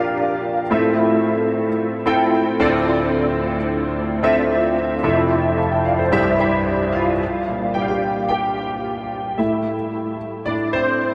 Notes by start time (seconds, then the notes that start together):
Already playing: A#2 F3 D4 F4 G4 A#4 F5
0.70 A2 A3 C4 E4 F4 A4 E5
2.06 C4 E4 F4 A4 G5
2.60 D2 A2 C4 D4 F4 A4 D5
4.23 C4 D4 F4 A4 E5
5.03 F2 C3 C4 E4 F4 A4 E5
5.58 F5 A5
5.72 E5 G5
5.85 D5 F5
5.99 A4 C5
6.12 C2 G2 D4 E4 G4 C5 E5
6.39 D4 E4 G4 C5 E5
6.93 F4 F5
7.48 A#2 G3 D4
7.74 G4 G5
7.81 F5
7.88 G4 G5
8.29 G4 G5
9.38 A2 A3 E4 E5
10.46 A2 A3 D4 E4 D5
10.73 C4 C5